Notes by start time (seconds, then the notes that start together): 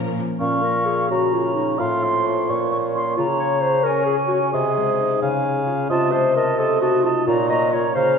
Already playing: A#2 F3 A#3 C#4 F4 A#4
0.17 A#3
0.39 A#2 C#4 F5 C#6
0.63 A#3 A#4
0.85 F4 G#4
1.10 C#3 F#4 A#4 C#5 A#5
1.33 C#4 F4
1.55 A#3 D#4
1.78 A2 F4 F5 C6
2.02 C4 C5
2.25 C4 F4 C#5
2.49 A#2 C#6
2.72 A#3 C#6
2.94 C#4 F4 C6
3.17 C#3 F4 A#5
3.39 C#4 C#5
3.61 G#4 C5
3.84 C#4 A#4 C#5 G#5
4.06 F4 G#4
4.28 C#4 F#4
4.51 C3 G#4 D#5
4.77 G#3
5.00 D#4
5.22 C#3 F5 G#5
5.44 C#4
5.66 C#4 F4
5.89 C3 F4 D#5 A5
6.12 A3 C5 D#5 A5
6.35 F4 A#4 D#5 A5
6.58 C3 A4 D#5 A5
6.81 D#4 F#4 D#5 A5
7.03 A3 F4 D#5 A5
7.26 A#2 F4 C#5 A#5
7.49 A#3 C#5 D#5 A#5
7.72 C#4 F4 C#5 A#5
7.95 C#3 C5 F5 A#5